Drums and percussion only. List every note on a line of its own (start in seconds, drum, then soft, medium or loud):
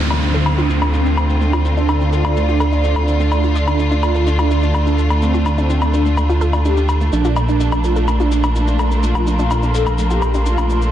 0.10 low woodblock soft
0.10 shaker soft
0.22 shaker medium
0.34 shaker soft
0.46 low woodblock soft
0.46 shaker medium
0.58 shaker soft
0.70 shaker medium
0.82 low woodblock soft
0.82 shaker soft
0.94 shaker medium
1.06 shaker soft
1.17 low woodblock soft
1.17 shaker medium
1.30 shaker soft
1.41 shaker medium
1.53 low woodblock soft
1.53 shaker soft
1.65 shaker medium
1.77 shaker soft
1.89 low woodblock soft
1.89 shaker medium
2.01 shaker soft
2.13 shaker medium
2.25 low woodblock soft
2.25 shaker soft
2.36 shaker medium
2.49 shaker soft
2.60 low woodblock soft
2.60 shaker medium
2.72 shaker soft
2.84 shaker medium
2.96 low woodblock soft
2.96 shaker soft
3.08 shaker medium
3.20 shaker soft
3.32 low woodblock soft
3.32 shaker medium
3.44 shaker soft
3.55 shaker medium
3.68 low woodblock soft
3.68 shaker soft
3.79 shaker medium
3.91 shaker soft
4.03 low woodblock soft
4.03 shaker medium
4.15 shaker soft
4.27 shaker medium
4.39 low woodblock soft
4.39 shaker soft
4.51 shaker medium
4.63 shaker soft
4.75 low woodblock soft
4.75 shaker medium
4.87 shaker soft
4.98 shaker medium
5.10 low woodblock soft
5.10 shaker soft
5.22 shaker medium
5.34 shaker soft
5.46 low woodblock soft
5.46 shaker medium
5.58 shaker soft
5.70 shaker medium
5.82 low woodblock soft
5.82 shaker soft
5.94 shaker medium
6.06 shaker soft
6.17 low woodblock soft
6.17 shaker medium
6.29 shaker soft
6.41 shaker medium
6.53 low woodblock soft
6.53 shaker soft
6.65 shaker medium
6.77 shaker soft
6.89 low woodblock soft
6.89 shaker medium
7.01 shaker soft
7.13 shaker medium
7.25 shaker soft
7.36 low woodblock medium
7.36 shaker medium
7.49 shaker soft
7.60 shaker medium
7.72 low woodblock soft
7.72 shaker soft
7.84 shaker medium
7.96 shaker soft
8.08 low woodblock soft
8.08 shaker medium
8.20 shaker soft
8.32 shaker medium
8.44 low woodblock soft
8.44 shaker soft
8.56 shaker medium
8.68 shaker soft
8.79 low woodblock soft
8.79 shaker medium
8.91 shaker soft
9.03 shaker medium
9.15 low woodblock medium
9.15 shaker soft
9.27 shaker medium
9.39 shaker soft
9.51 low woodblock medium
9.51 shaker medium
9.63 shaker soft
9.75 shaker medium
9.87 low woodblock medium
9.87 shaker soft
9.98 shaker medium
10.10 shaker soft
10.22 low woodblock medium
10.22 shaker medium
10.34 shaker soft
10.46 shaker medium
10.58 low woodblock medium
10.58 shaker soft
10.70 shaker medium
10.82 shaker soft